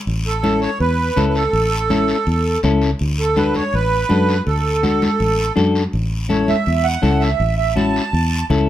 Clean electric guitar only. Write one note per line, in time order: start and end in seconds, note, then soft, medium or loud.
0.43 0.69 C#4 medium
0.43 0.69 E4 medium
0.43 0.69 A4 medium
1.16 1.42 C#4 medium
1.16 1.43 E4 medium
1.16 1.43 A4 medium
1.90 2.16 C#4 medium
1.90 2.16 E4 medium
1.90 2.16 A4 medium
2.64 2.89 C#4 medium
2.64 2.90 E4 medium
2.64 2.90 A4 medium
3.37 3.62 D4 medium
3.37 3.63 F#4 soft
3.37 3.63 A4 medium
4.09 4.35 D4 medium
4.09 4.36 F#4 medium
4.09 4.36 A4 medium
4.83 5.09 D4 medium
4.83 5.09 F#4 medium
4.83 5.09 A4 medium
5.56 5.82 D4 medium
5.56 5.82 F#4 medium
5.56 5.82 A4 medium
6.29 6.55 C#4 medium
6.29 6.55 E4 medium
6.29 6.56 A4 medium
7.02 7.28 C#4 medium
7.02 7.28 E4 medium
7.02 7.29 A4 medium
7.76 8.02 C#4 medium
7.76 8.02 E4 medium
7.76 8.02 F#4 medium
8.50 8.69 C#4 medium
8.50 8.69 E4 medium
8.50 8.69 A4 medium